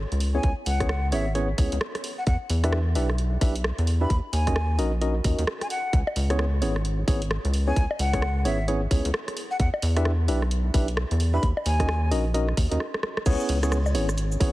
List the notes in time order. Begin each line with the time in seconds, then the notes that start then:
0.12 C#2, closed hi-hat
0.20 open hi-hat
0.35 B3 C#4 E4 G#4 C#5 G#5
0.43 C#2, kick, closed hi-hat
0.66 C#2 F#5, open hi-hat
0.80 B3 C#4 E4 G#4 C#5, kick, cross-stick, closed hi-hat
0.89 cross-stick
1.12 G#1 B3 C#4 E4 G#4 C#5 E5, open hi-hat
1.35 B3 C#4 E4 G#4 C#5, closed hi-hat
1.58 C#2 B3 C#4 E4 G#4 C#5, kick, open hi-hat
1.72 C#2, closed hi-hat
1.81 cross-stick
1.95 cross-stick, closed hi-hat
2.04 open hi-hat
2.18 F#5
2.27 E2 F#5, kick, closed hi-hat
2.50 E2, open hi-hat
2.64 D4 E4 G4 B4 E5, cross-stick, closed hi-hat
2.72 cross-stick
2.95 B1 D4 E4 G4 B4 E5, open hi-hat
3.10 cross-stick
3.18 closed hi-hat
3.41 B1 D4 E4 G4 B4 E5, kick, open hi-hat
3.56 closed hi-hat
3.64 cross-stick
3.78 E2, closed hi-hat
3.87 open hi-hat
4.01 D4 E4 G4 B4 E5 B5
4.10 D#2, kick, closed hi-hat
4.33 D#2 G#5, open hi-hat
4.47 C#4 D#4 F#4 A#4 D#5, kick, cross-stick, closed hi-hat
4.56 cross-stick
4.79 A#1 C#4 D#4 F#4 A#4 D#5, open hi-hat
5.01 C#4 D#4 F#4 A#4 D#5, closed hi-hat
5.24 D#2 C#4 D#4 F#4 A#4 D#5, kick, open hi-hat
5.38 D#2, closed hi-hat
5.47 cross-stick
5.61 G#5, cross-stick, closed hi-hat
5.70 F#5, open hi-hat
5.93 C#2, kick, closed hi-hat
6.07 high bongo
6.16 C#2, open hi-hat
6.30 B3 C#4 E4 G#4 C#5, cross-stick, closed hi-hat
6.39 cross-stick
6.62 G#1 B3 C#4 E4 G#4 C#5, open hi-hat
6.76 cross-stick
6.85 closed hi-hat
7.08 G#1 B3 C#4 E4 G#4 C#5, kick, open hi-hat
7.22 closed hi-hat
7.31 cross-stick
7.45 C#2, closed hi-hat
7.54 open hi-hat
7.68 B3 C#4 E4 G#4 C#5 G#5
7.76 C#2, kick, closed hi-hat
7.91 high bongo
7.99 C#2 F#5, open hi-hat
8.13 B3 C#4 E4 G#4 C#5, kick, cross-stick, closed hi-hat
8.22 cross-stick
8.45 G#1 B3 C#4 E4 G#4 C#5 E5, open hi-hat
8.68 B3 C#4 E4 G#4 C#5, closed hi-hat
8.91 C#2 B3 C#4 E4 G#4 C#5, kick, open hi-hat
9.05 C#2, closed hi-hat
9.14 cross-stick
9.28 cross-stick, closed hi-hat
9.37 open hi-hat
9.51 F#5
9.60 E2 F#5, kick, closed hi-hat
9.74 high bongo
9.82 E2, open hi-hat
9.97 D4 E4 G4 B4 E5, cross-stick, closed hi-hat
10.05 cross-stick
10.28 B1 D4 E4 G4 B4 E5, open hi-hat
10.42 cross-stick
10.51 closed hi-hat
10.74 B1 D4 E4 G4 B4 E5, kick, open hi-hat
10.88 closed hi-hat
10.97 cross-stick
11.11 E2, closed hi-hat
11.20 open hi-hat
11.34 D4 E4 G4 B4 E5 B5
11.43 D#2, kick, closed hi-hat
11.57 high bongo
11.66 D#2 G#5, open hi-hat
11.80 C#4 D#4 F#4 A#4 D#5, kick, cross-stick, closed hi-hat
11.89 cross-stick
12.11 A#1 C#4 D#4 F#4 A#4 D#5, open hi-hat
12.34 C#4 D#4 F#4 A#4 D#5, closed hi-hat
12.48 cross-stick
12.57 D#2, kick, open hi-hat
12.71 D#2 C#4 D#4 F#4 A#4 D#5, closed hi-hat
12.80 cross-stick
12.94 cross-stick
13.03 cross-stick
13.17 cross-stick
13.26 C#2 B3 C#4 E4 G#4 C#5, kick, closed hi-hat, crash, cabasa
13.40 cabasa
13.49 C#2, open hi-hat
13.63 B3 C#4 E4 G#4 C#5, cross-stick, closed hi-hat, cabasa
13.72 cross-stick, cabasa
13.86 high bongo, cabasa
13.95 G#1 B3 C#4 E4 G#4 C#5, open hi-hat
14.09 cross-stick, cabasa
14.18 closed hi-hat, cabasa
14.32 cabasa
14.40 G#1 B3 C#4 E4 G#4 C#5, kick, open hi-hat